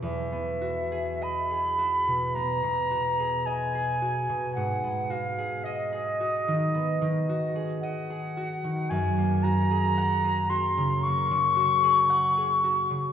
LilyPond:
<<
  \new Staff \with { instrumentName = "Flute" } { \time 4/4 \key e \minor \tempo 4 = 55 e''4 b''4 bes''4 gis''4 | ges''8 f''8 ees''4.~ ees''16 r16 ges''4 | gis''8 ais''4 c'''8 cis'''2 | }
  \new Staff \with { instrumentName = "Harp" } { \time 4/4 \key e \minor <e, e' b'>16 b16 fis'16 gis'16 dis''16 gis'16 fis'16 b,16 b16 b,16 fis'16 gis'16 dis''16 gis'16 fis'16 b,16 | aes,16 ces'16 ges'16 aes'16 ees''16 aes'16 ges'16 ees16 ces'16 ees16 ges'16 aes'16 ees''16 aes'16 ges'16 ees16 | fis,16 ais16 fis'16 gis'16 fis''16 gis'16 fis'16 cis16 ais16 cis16 fis'16 gis'16 fis''16 gis'16 fis'16 cis16 | }
>>